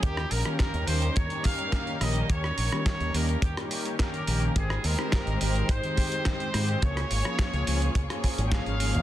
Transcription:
<<
  \new Staff \with { instrumentName = "Trumpet section" } { \time 4/4 \key ees \mixolydian \tempo 4 = 106 g'8 bes'8 bes'8 c''8 des''8 f''4 ees''8 | des''4 des''8 bes'8 g'8 r8 bes'4 | aes'8 bes'4 bes'8 c''2 | des''2~ des''8 r16. g''32 f''4 | }
  \new Staff \with { instrumentName = "String section" } { \time 4/4 \key ees \mixolydian <g des' ees' bes'>1~ | <g des' ees' bes'>1 | <aes ees' g' c''>1 | <bes f' aes' des''>1 | }
  \new Staff \with { instrumentName = "Analog polysynth" } { \time 4/4 \key ees \mixolydian <ees bes des'>16 r8 <ees bes des' g'>8. <ees bes des' g'>8 r16 <ees bes des' g'>8. <ees bes des' g'>8 <ees bes des' g'>8 | <ees bes des' g'>16 r8 <ees bes des' g'>8. <ees bes des' g'>8 r16 <ees bes des' g'>8. <ees bes des' g'>8 <ees bes des' g'>8 | <ees aes c' g'>16 r8 <ees aes c' g'>8. <ees aes c' g'>8 r16 <ees aes c' g'>8. <ees aes c'>8 <ees aes c' g'>8 | <f bes des'>16 r8 <f bes des' aes'>8. <f bes des' aes'>8 r16 <f bes des' aes'>8. <f bes des' aes'>8 <f bes des' aes'>8 | }
  \new Staff \with { instrumentName = "Fingered electric bass" } { \clef bass \time 4/4 \key ees \mixolydian ees,16 r16 bes,,16 r8 ees,16 ees,16 r16 ees,16 r4 r16 bes,,16 r16 | ees,16 r16 bes,,16 r8 ees,16 ees,16 r16 ees,16 r4 r16 bes,,16 r16 | aes,,16 r16 ees,16 r8 aes,,16 aes,,16 r16 aes,,16 r4 r16 aes,16 r16 | des,16 r16 aes,,16 r8 des,16 des,16 r16 des,16 r8 aes,,16 r16 aes,,8 f,16 | }
  \new DrumStaff \with { instrumentName = "Drums" } \drummode { \time 4/4 <hh bd>16 ss16 hho16 <hh ss>16 <hh bd sn>16 hh16 hho16 hh16 <hh bd>16 hh16 <hho bd>16 hh16 <hh bd sn>16 hh16 <hho ss>16 hh16 | <hh bd>16 ss16 hho16 ss16 <hh bd sn>16 hh16 hho16 hh16 <hh bd>16 <hh ss>16 hho16 hh16 <hh bd sn>16 hh16 hho16 hh16 | <hh bd>16 ss16 hho16 <hh ss>16 <hh bd sn>16 hh16 hho16 hh16 <hh bd>16 hh16 <hho bd>16 hh16 <hh bd sn>16 hh16 <hho ss>16 hh16 | <hh bd>16 <hh ss>16 hho16 ss16 <hh bd sn>16 hh16 hho16 hh16 <hh bd>16 <hh ss>16 <hho bd>16 hh16 <hh bd sn>16 hh16 hho16 hh16 | }
>>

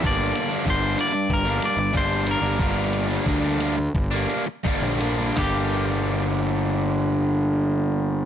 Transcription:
<<
  \new Staff \with { instrumentName = "Clean electric guitar" } { \time 4/4 \key g \minor \tempo 4 = 87 d''4 c''8 d''8 bes'8 d''8 c''8 bes'8~ | bes'2.~ bes'8 r8 | g'1 | }
  \new Staff \with { instrumentName = "Overdriven electric guitar" } { \time 4/4 \key g \minor <g, d g bes d'>8. <g bes d'>16 <g, d g bes d'>16 <g bes d'>16 <d g bes d'>8. <g bes d'>8. <g, d g bes d'>8 <d g bes d'>16 <g bes d'>16 | <g, d g bes d'>8. <g bes d'>16 <g, d g bes d'>16 <g bes d'>16 <d g bes d'>8. <g bes d'>8. <g, d g bes d'>8 <d g bes d'>16 <g bes d'>16 | <g, d g bes d'>1 | }
  \new Staff \with { instrumentName = "Picked electric bass" } { \clef bass \time 4/4 \key g \minor g,,8 r8 g,,8 r8 g,,8 r16 g,,4 g,,16 | g,,4 d,4 g,,8 r8. bes,,8. | g,,1 | }
  \new DrumStaff \with { instrumentName = "Drums" } \drummode { \time 4/4 bd8 hh8 bd8 hh8 bd8 hh8 bd8 hh8 | bd8 hh8 bd8 hh8 bd8 hh8 bd8 hh8 | <hc bd sn>4 r4 r4 r4 | }
>>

